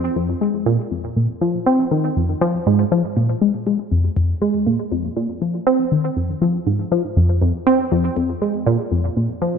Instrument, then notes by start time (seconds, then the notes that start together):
synth arpeggio sound
0.16 F2
0.41 G#3
0.66 A#2
0.91 F2
1.16 A#2
1.41 F3
1.66 C4
1.91 D#3
2.16 F2
2.41 F3
2.67 G#2
2.92 F3
3.17 A#2
3.42 G#3
3.67 G#3
3.92 F2
4.17 F2
4.42 G#3
4.66 A#2
4.91 F2
5.17 A#2
5.42 F3
5.67 C4
5.92 D#3
6.17 F2
6.42 F3
6.67 G#2
6.92 F3
7.17 F2
7.42 F2
7.67 C4
7.92 F2
8.17 F2
8.42 G#3
8.66 A#2
8.92 F2
9.17 A#2
9.42 F3